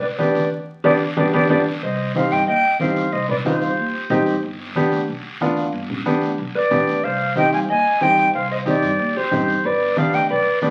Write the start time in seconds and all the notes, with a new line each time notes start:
0.01 B4 D5
0.18 D2 B3 D4 G4 B4 D5, high conga, short guiro
0.35 high conga, short guiro
0.84 G1 B3 D4 G4 B4 D5, high conga, long guiro
1.17 G1 B3 D4 G4 B4 D5, high conga, long guiro
1.33 G1 B3 D4 G4 B4 D5, high conga, long guiro
1.49 G1 B3 D4 G4 B4 D5, high conga, long guiro
1.82 C2 C5 D#5, high conga, long guiro
2.15 C4 D#4 G4 C5 F5, high conga, short guiro
2.31 G2 D#5 G5, short guiro
2.47 D#2 D#5 G5, high conga, long guiro
2.80 G2 C4 D#4 G4 C5 F5, high conga, short guiro
2.96 short guiro
3.12 C2 C5 D#5, high conga, long guiro
3.28 B4 D5, low conga
3.45 C4 D#4 F4 G4 C5, high conga, short guiro
3.61 G2, short guiro
3.77 D#2, high conga, long guiro
4.10 G2 C4 D#4 G4, high conga, low conga, short guiro
4.26 short guiro
4.43 G1, high conga, long guiro
4.75 B3 D4 G4, high conga, short guiro
4.92 D2, short guiro
5.08 B1, high conga, long guiro
5.40 D2 B3 D4 F4, high conga, short guiro
5.57 short guiro
5.73 G1, long guiro
5.90 low conga
6.05 B3 D4 G4, high conga, short guiro
6.22 D2, short guiro
6.38 B1, high conga, long guiro
6.55 B4 D5
6.71 F2 B3 D4 G4, high conga, low conga, short guiro
6.87 D2, short guiro
7.03 C2 C5 F5, high conga, long guiro
7.35 C4 D#4 G4 D#5 G5, high conga, short guiro
7.52 G2 F5 G#5, short guiro
7.68 D#2 D#5 G#5, high conga, long guiro
8.01 G2 C4 D#4 G4 D#5 G5, high conga, short guiro
8.17 short guiro
8.34 C2 C5 F5, high conga, long guiro
8.51 C5 D#5
8.65 C4 D#4 G4 D5, high conga, short guiro
8.82 G2, short guiro
8.99 D#2, high conga, long guiro
9.17 G4 C5
9.31 G2 C4 D#4 G4, high conga, low conga, short guiro
9.48 short guiro
9.64 G1 B4 D5, high conga, long guiro
9.96 B3 D4 G4 D5 F5, high conga, short guiro
10.13 D2 D#5 G5, short guiro
10.29 B1 B4 D5, high conga, long guiro
10.61 D2 B3 D4 G4 B4 D5, high conga, short guiro